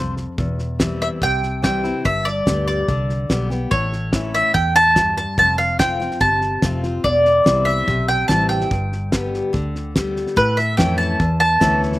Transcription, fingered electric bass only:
Already playing: C2
0.38 E1
1.21 C2
2.05 G1
2.47 D2
2.89 C2
3.30 B1
3.72 A1
4.55 E2
5.38 F1
6.21 G1
6.62 F1
7.04 E1
7.46 C2
7.87 B1
8.29 A1
8.71 G1
9.54 D2
10.37 A2
10.78 F2
11.20 E2
11.61 D2

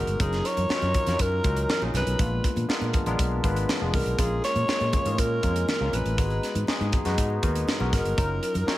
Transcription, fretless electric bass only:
0.07 G1
0.20 F#1
0.57 F#2
0.70 muted fretless electric bass stroke
0.82 F#2
1.07 F2
1.20 F#2
1.44 C#2
1.82 A#1
1.94 C2
2.07 B1
2.19 A#1
2.56 A#2
2.69 muted fretless electric bass stroke
2.81 A#2
3.07 A#1
3.19 B1
3.44 G#1
3.81 F1
3.94 C2
4.06 B1
4.18 A#1
4.56 A#2
4.68 muted fretless electric bass stroke
4.81 A#2
5.06 G#2
5.18 A#2
5.43 F2
5.81 C#2
5.93 A#1
6.06 A1
6.18 G#1
6.55 G#2
6.68 muted fretless electric bass stroke
6.81 G#2
7.06 F#2
7.18 G#2
7.43 D#2
7.80 B1
7.93 G#1
8.05 G1
8.18 F#1
8.55 F#2
8.67 muted fretless electric bass stroke

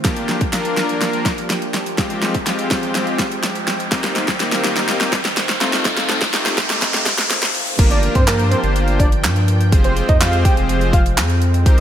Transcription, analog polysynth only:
0.04 A#3 D4 F4 G4
0.53 A#3 D4 F4 A#4
1.98 G#3 C4 F4 G4
2.46 G#3 C4 F4 G4
3.91 A#3 C4 D#4 G4
4.40 A#3 C4 D#4 G4
5.61 A3 C4 D#4 F4
6.33 A3 C4 D#4 G4
7.79 A#3 D4 F4 G4 A#4
8.27 A#3 D4 F4 G4 C5
9.72 C4 F4 G4 G#4 C5
10.21 C4 F4 G4 G#4 C5
11.66 C4 D#4 G4 A#4 C5

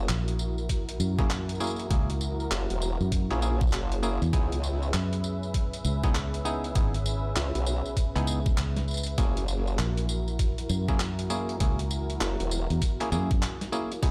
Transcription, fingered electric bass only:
0.09 A#1
1.00 F#2
1.91 C#2
3.01 F#2
4.22 E2
4.94 F#2
5.85 C#2
6.75 G#1
8.16 C#2
8.57 C#2
9.79 A#1
10.70 F#2
11.61 C#2
12.70 E2
13.12 F#2

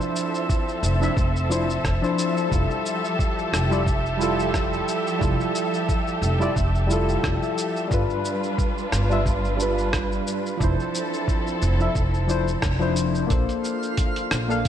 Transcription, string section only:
Already playing: F3 C4 A4 E5
2.51 F3 G4
7.90 G3 D4 F4 B4
10.61 F3 C4 E4 A4

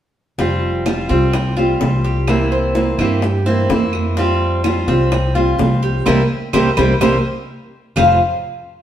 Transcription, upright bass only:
0.38 F1
1.09 C2
1.81 C2
2.99 G2
3.69 F2
4.88 C2
5.59 C2
6.06 C2
6.53 C2
6.77 C2
7.01 C2
7.96 F1

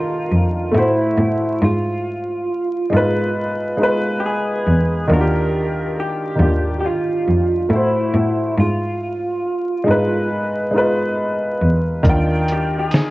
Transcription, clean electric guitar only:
Already playing: F4
0.77 E4
1.64 F4
4.20 G4
4.26 G#4
5.13 A#4
6.00 G4
6.80 G4
6.86 F4
7.73 E4
8.60 F4
12.52 G4
12.79 G#4

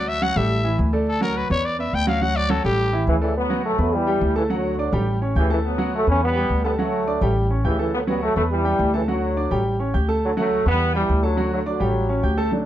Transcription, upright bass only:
Already playing: D2
0.36 A1
0.79 D2
1.50 E2
1.93 D2
2.64 A1
3.07 D2
3.78 E2
4.21 D2
4.92 A1
5.35 D2
6.07 E2
6.50 D2
7.21 A1
7.64 D2
8.36 E2
8.79 D2
9.51 A1
9.94 D2
10.66 E2
11.09 D2
11.80 A1
12.23 D2

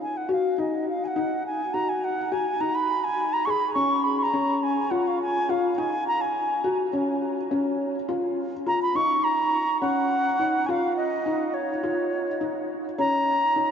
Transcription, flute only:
0.02 G#5
0.17 F#5
0.32 F5
0.60 D#5
0.90 F5
1.04 F#5 G#5
1.46 G#5
1.74 A#5
1.89 G#5
2.04 F#5
2.32 G#5
2.61 A#5
2.75 B5
3.04 G#5
3.33 A#5
3.45 C#6
3.50 B5
3.74 C#6
4.04 B5
4.19 A#5 C#6
4.63 G#5
4.91 F#5
5.07 F5
5.22 G#5
5.50 F5
5.78 G#5
6.07 A#5
6.21 G#5
8.67 A#5
8.82 B5
8.96 C#6
9.24 A#5
9.81 F#5
10.66 F5 G#5
10.97 D#5
11.54 C#5
12.99 A#5

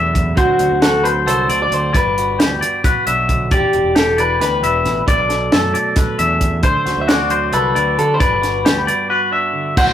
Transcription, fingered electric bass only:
Already playing: E2
0.37 D2
0.59 D2
0.71 D2
1.26 C2
1.49 D2
1.70 D2
1.94 G1
2.05 G1
2.39 D2
3.06 B1
3.51 E1
3.73 E1
3.83 E1
4.39 D2
4.62 E1
4.84 A1
5.07 B1
5.18 B1
5.52 F#2
6.19 E2
6.63 D2
6.86 D2
6.97 D2
7.52 C2
7.75 D2
7.99 D3
8.20 G1
8.31 G1
8.66 D2
9.77 D2

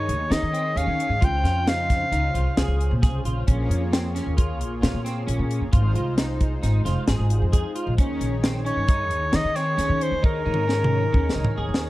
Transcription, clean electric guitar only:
Already playing: D#4
0.30 D#4
0.53 C4
0.76 C#4
1.21 F4
1.44 F4
1.67 D#4
2.12 D#4
2.35 F4
2.57 G#4
3.02 G#4
3.25 F4
3.47 C#4
3.93 C4
4.15 C#4
4.37 F4
4.82 F4
5.05 C4
5.27 C#4
5.73 F4
5.96 F4
6.17 D#4
6.63 D#4
6.85 F4
7.08 G#4
7.53 G#4
7.75 F4
7.98 C#4
8.43 C4
8.65 C#4
8.88 D#4
9.32 D#4
9.55 C4
9.77 C#4
10.23 D#4
10.45 D#4
10.68 C#4
11.13 C#4
11.35 D#4
11.58 G#4

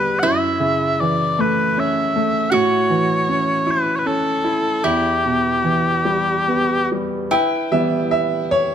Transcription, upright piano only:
Already playing: E2 B2 D3 G3 B3
0.24 F#2
0.60 C#3
1.01 E3
1.39 A3
1.77 C#4
2.16 A3
2.54 A2
2.90 E3
3.29 C#4
3.66 E4
4.06 C#4
4.44 E4
4.85 E2
5.25 B2
5.64 E3
6.05 G3
6.48 B3
6.92 G3
7.31 B4 G5
7.72 E3 G3 B3 E5
8.11 E5
8.51 C#5

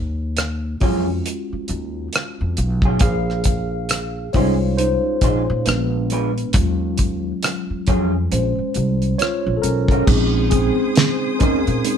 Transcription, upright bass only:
Already playing: D#2
0.82 F2
1.53 muted upright bass stroke
1.69 D#2
2.41 F2
2.58 B1
3.01 A#1
4.35 C2
5.22 A#1
5.50 A#2
5.67 A#1
6.55 D#2
7.70 muted upright bass stroke
7.88 F2
8.31 A#1
8.59 muted upright bass stroke
8.76 C2
9.47 A#1
9.64 B1
10.08 A#1
11.41 D#2
11.68 A#2

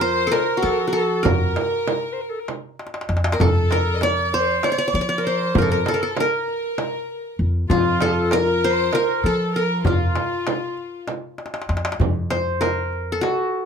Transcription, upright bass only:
Already playing: F2
0.63 F3
1.25 F2
3.09 F2
3.40 F2
4.94 F3
5.55 F2
7.39 F2
7.70 F2
9.24 F3
9.85 F2
11.69 F2
11.99 F2

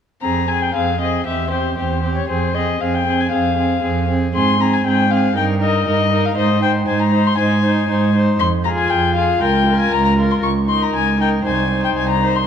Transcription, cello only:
0.23 F2
0.75 F2
1.27 E2
1.78 E2
2.30 F2
2.82 F2
3.33 F2
3.83 F2
4.35 G#2
4.85 G#2
5.36 G2
5.87 G2
6.37 G#2
6.88 G#2
7.39 G#2
7.89 G#2
8.39 F2
8.91 F2
9.41 C#2
9.92 C#2
10.43 C#2
10.93 C#2
11.45 C2
11.96 C2

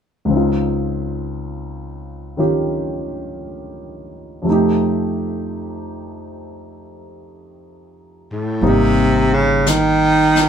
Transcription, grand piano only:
0.25 C#2 C#3
0.31 C4 D#4
0.37 F4
2.37 D#3 C#4 F4 G4
4.42 F2 C3
4.47 A3 D#4
4.53 G4
8.62 G3 A#3 C4 D#4

